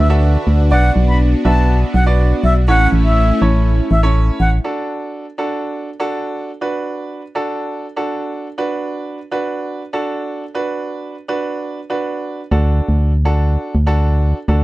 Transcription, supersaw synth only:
0, 0, Header, 1, 2, 480
1, 0, Start_track
1, 0, Key_signature, 2, "major"
1, 0, Tempo, 491803
1, 696, Time_signature, 4, 2, 24, 8
1, 14288, End_track
2, 0, Start_track
2, 0, Title_t, "Supersaw synth"
2, 0, Program_c, 0, 81
2, 0, Note_on_c, 0, 50, 83
2, 0, Note_on_c, 0, 62, 75
2, 0, Note_on_c, 0, 66, 76
2, 0, Note_on_c, 0, 71, 95
2, 658, Note_off_c, 0, 50, 0
2, 678, Note_off_c, 0, 71, 0
2, 698, Note_on_c, 0, 59, 84
2, 2578, Note_off_c, 0, 62, 0
2, 2578, Note_off_c, 0, 66, 0
2, 2598, Note_off_c, 0, 59, 0
2, 2614, Note_on_c, 0, 64, 92
2, 2615, Note_on_c, 0, 57, 83
2, 2615, Note_on_c, 0, 61, 80
2, 4516, Note_off_c, 0, 57, 0
2, 4516, Note_off_c, 0, 61, 0
2, 4516, Note_off_c, 0, 64, 0
2, 14288, End_track
0, 0, End_of_file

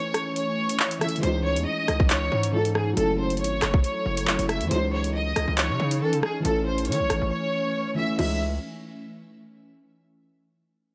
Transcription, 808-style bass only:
0, 0, Header, 1, 2, 480
1, 0, Start_track
1, 0, Key_signature, 4, "minor"
1, 0, Tempo, 434783
1, 1359, Time_signature, 4, 2, 24, 8
1, 12088, End_track
2, 0, Start_track
2, 0, Title_t, "808-style bass"
2, 0, Program_c, 0, 38
2, 1359, Note_on_c, 0, 37, 107
2, 1726, Note_on_c, 0, 40, 99
2, 1743, Note_off_c, 0, 37, 0
2, 1833, Note_off_c, 0, 40, 0
2, 2079, Note_on_c, 0, 37, 101
2, 2540, Note_off_c, 0, 37, 0
2, 2559, Note_on_c, 0, 44, 103
2, 3250, Note_off_c, 0, 44, 0
2, 3279, Note_on_c, 0, 30, 105
2, 3759, Note_on_c, 0, 32, 98
2, 3776, Note_off_c, 0, 30, 0
2, 3987, Note_off_c, 0, 32, 0
2, 3999, Note_on_c, 0, 30, 101
2, 4229, Note_off_c, 0, 30, 0
2, 4479, Note_on_c, 0, 30, 102
2, 4832, Note_off_c, 0, 30, 0
2, 4847, Note_on_c, 0, 30, 109
2, 5086, Note_on_c, 0, 42, 102
2, 5103, Note_off_c, 0, 30, 0
2, 5193, Note_off_c, 0, 42, 0
2, 5200, Note_on_c, 0, 37, 113
2, 5890, Note_off_c, 0, 37, 0
2, 5919, Note_on_c, 0, 37, 102
2, 6041, Note_off_c, 0, 37, 0
2, 6046, Note_on_c, 0, 37, 109
2, 6286, Note_on_c, 0, 49, 99
2, 6303, Note_off_c, 0, 37, 0
2, 6393, Note_off_c, 0, 49, 0
2, 6399, Note_on_c, 0, 49, 107
2, 6640, Note_on_c, 0, 52, 99
2, 6656, Note_off_c, 0, 49, 0
2, 6766, Note_on_c, 0, 49, 98
2, 6783, Note_off_c, 0, 52, 0
2, 6873, Note_off_c, 0, 49, 0
2, 7119, Note_on_c, 0, 33, 108
2, 7599, Note_on_c, 0, 52, 100
2, 7616, Note_off_c, 0, 33, 0
2, 7726, Note_on_c, 0, 33, 95
2, 7743, Note_off_c, 0, 52, 0
2, 7833, Note_off_c, 0, 33, 0
2, 7839, Note_on_c, 0, 33, 101
2, 7961, Note_off_c, 0, 33, 0
2, 7966, Note_on_c, 0, 33, 104
2, 8079, Note_off_c, 0, 33, 0
2, 9039, Note_on_c, 0, 37, 112
2, 9486, Note_off_c, 0, 37, 0
2, 12088, End_track
0, 0, End_of_file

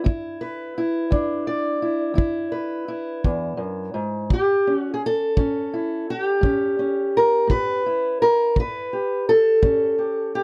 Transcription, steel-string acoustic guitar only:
0, 0, Header, 1, 2, 480
1, 0, Start_track
1, 0, Tempo, 707547
1, 45, Time_signature, 12, 3, 24, 8
1, 7078, End_track
2, 0, Start_track
2, 0, Title_t, "Steel-string acoustic guitar"
2, 0, Program_c, 0, 25
2, 27, Note_on_c, 0, 40, 75
2, 30, Note_on_c, 0, 64, 58
2, 278, Note_on_c, 0, 71, 61
2, 467, Note_off_c, 0, 40, 0
2, 524, Note_off_c, 0, 64, 0
2, 527, Note_on_c, 0, 64, 54
2, 750, Note_on_c, 0, 40, 69
2, 758, Note_on_c, 0, 62, 53
2, 995, Note_off_c, 0, 71, 0
2, 998, Note_on_c, 0, 74, 58
2, 1188, Note_off_c, 0, 40, 0
2, 1233, Note_off_c, 0, 64, 0
2, 1236, Note_on_c, 0, 64, 50
2, 1451, Note_on_c, 0, 40, 66
2, 1458, Note_off_c, 0, 64, 0
2, 1461, Note_on_c, 0, 64, 55
2, 1705, Note_off_c, 0, 74, 0
2, 1708, Note_on_c, 0, 71, 56
2, 1898, Note_off_c, 0, 40, 0
2, 1952, Note_off_c, 0, 64, 0
2, 1955, Note_on_c, 0, 64, 54
2, 2201, Note_on_c, 0, 40, 58
2, 2420, Note_off_c, 0, 40, 0
2, 2423, Note_on_c, 0, 42, 57
2, 2670, Note_off_c, 0, 42, 0
2, 2673, Note_on_c, 0, 44, 64
2, 2885, Note_off_c, 0, 71, 0
2, 2890, Note_off_c, 0, 62, 0
2, 2917, Note_off_c, 0, 44, 0
2, 2918, Note_on_c, 0, 45, 68
2, 2938, Note_off_c, 0, 64, 0
2, 2940, Note_on_c, 0, 67, 87
2, 3169, Note_on_c, 0, 61, 46
2, 3239, Note_off_c, 0, 67, 0
2, 3239, Note_on_c, 0, 66, 87
2, 3346, Note_off_c, 0, 66, 0
2, 3349, Note_on_c, 0, 68, 68
2, 3352, Note_off_c, 0, 45, 0
2, 3399, Note_off_c, 0, 68, 0
2, 3433, Note_on_c, 0, 69, 93
2, 3641, Note_on_c, 0, 45, 69
2, 3644, Note_off_c, 0, 61, 0
2, 3646, Note_on_c, 0, 61, 46
2, 3891, Note_on_c, 0, 64, 46
2, 4073, Note_off_c, 0, 45, 0
2, 4137, Note_off_c, 0, 64, 0
2, 4140, Note_on_c, 0, 66, 95
2, 4214, Note_off_c, 0, 66, 0
2, 4214, Note_on_c, 0, 67, 95
2, 4349, Note_on_c, 0, 45, 66
2, 4358, Note_off_c, 0, 61, 0
2, 4361, Note_on_c, 0, 61, 44
2, 4598, Note_off_c, 0, 61, 0
2, 4606, Note_on_c, 0, 61, 47
2, 4618, Note_off_c, 0, 69, 0
2, 4788, Note_off_c, 0, 45, 0
2, 4864, Note_on_c, 0, 70, 90
2, 5070, Note_on_c, 0, 45, 71
2, 5090, Note_off_c, 0, 70, 0
2, 5093, Note_on_c, 0, 71, 109
2, 5331, Note_off_c, 0, 67, 0
2, 5334, Note_on_c, 0, 64, 46
2, 5509, Note_off_c, 0, 45, 0
2, 5569, Note_off_c, 0, 71, 0
2, 5576, Note_on_c, 0, 70, 104
2, 5777, Note_off_c, 0, 61, 0
2, 5807, Note_on_c, 0, 45, 73
2, 5810, Note_off_c, 0, 70, 0
2, 5833, Note_on_c, 0, 71, 98
2, 6055, Note_off_c, 0, 64, 0
2, 6058, Note_on_c, 0, 67, 46
2, 6239, Note_off_c, 0, 45, 0
2, 6299, Note_off_c, 0, 71, 0
2, 6302, Note_on_c, 0, 69, 95
2, 6528, Note_on_c, 0, 45, 72
2, 6531, Note_on_c, 0, 61, 47
2, 6765, Note_off_c, 0, 67, 0
2, 6773, Note_on_c, 0, 67, 43
2, 6961, Note_off_c, 0, 45, 0
2, 7011, Note_off_c, 0, 67, 0
2, 7022, Note_on_c, 0, 67, 83
2, 7078, Note_off_c, 0, 61, 0
2, 7078, Note_off_c, 0, 67, 0
2, 7078, Note_off_c, 0, 69, 0
2, 7078, End_track
0, 0, End_of_file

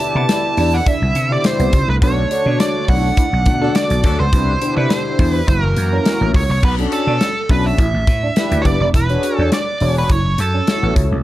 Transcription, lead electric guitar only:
0, 0, Header, 1, 2, 480
1, 0, Start_track
1, 0, Tempo, 576923
1, 1680, Time_signature, 4, 2, 24, 8
1, 9345, End_track
2, 0, Start_track
2, 0, Title_t, "Lead electric guitar"
2, 0, Program_c, 0, 29
2, 0, Note_on_c, 0, 81, 114
2, 131, Note_off_c, 0, 81, 0
2, 141, Note_on_c, 0, 81, 109
2, 616, Note_on_c, 0, 78, 89
2, 628, Note_off_c, 0, 81, 0
2, 730, Note_off_c, 0, 78, 0
2, 730, Note_on_c, 0, 76, 102
2, 1100, Note_on_c, 0, 74, 91
2, 1103, Note_off_c, 0, 76, 0
2, 1214, Note_off_c, 0, 74, 0
2, 1214, Note_on_c, 0, 72, 86
2, 1575, Note_off_c, 0, 72, 0
2, 1579, Note_on_c, 0, 71, 87
2, 1620, Note_off_c, 0, 71, 0
2, 1691, Note_on_c, 0, 73, 103
2, 2161, Note_off_c, 0, 73, 0
2, 2164, Note_on_c, 0, 74, 89
2, 2385, Note_off_c, 0, 74, 0
2, 2405, Note_on_c, 0, 78, 83
2, 3125, Note_on_c, 0, 74, 87
2, 3144, Note_off_c, 0, 78, 0
2, 3464, Note_off_c, 0, 74, 0
2, 3493, Note_on_c, 0, 72, 96
2, 3936, Note_off_c, 0, 72, 0
2, 3970, Note_on_c, 0, 71, 78
2, 4078, Note_off_c, 0, 71, 0
2, 4081, Note_on_c, 0, 72, 79
2, 4439, Note_off_c, 0, 72, 0
2, 4439, Note_on_c, 0, 71, 79
2, 4561, Note_off_c, 0, 71, 0
2, 4565, Note_on_c, 0, 70, 76
2, 5249, Note_off_c, 0, 70, 0
2, 5290, Note_on_c, 0, 73, 95
2, 5408, Note_off_c, 0, 73, 0
2, 5418, Note_on_c, 0, 73, 87
2, 5525, Note_off_c, 0, 73, 0
2, 5528, Note_on_c, 0, 71, 98
2, 5592, Note_off_c, 0, 71, 0
2, 5763, Note_on_c, 0, 69, 102
2, 6247, Note_on_c, 0, 71, 79
2, 6255, Note_off_c, 0, 69, 0
2, 6374, Note_off_c, 0, 71, 0
2, 6375, Note_on_c, 0, 76, 96
2, 7170, Note_on_c, 0, 73, 69
2, 7199, Note_off_c, 0, 73, 0
2, 7199, Note_off_c, 0, 76, 0
2, 7206, Note_on_c, 0, 74, 100
2, 7326, Note_off_c, 0, 74, 0
2, 7336, Note_on_c, 0, 74, 90
2, 7378, Note_off_c, 0, 74, 0
2, 7453, Note_on_c, 0, 71, 93
2, 7794, Note_off_c, 0, 71, 0
2, 7794, Note_on_c, 0, 69, 93
2, 7893, Note_off_c, 0, 69, 0
2, 7933, Note_on_c, 0, 74, 89
2, 8268, Note_off_c, 0, 74, 0
2, 8306, Note_on_c, 0, 71, 74
2, 8415, Note_off_c, 0, 71, 0
2, 8415, Note_on_c, 0, 73, 85
2, 8654, Note_off_c, 0, 73, 0
2, 8654, Note_on_c, 0, 69, 77
2, 9094, Note_off_c, 0, 69, 0
2, 9345, End_track
0, 0, End_of_file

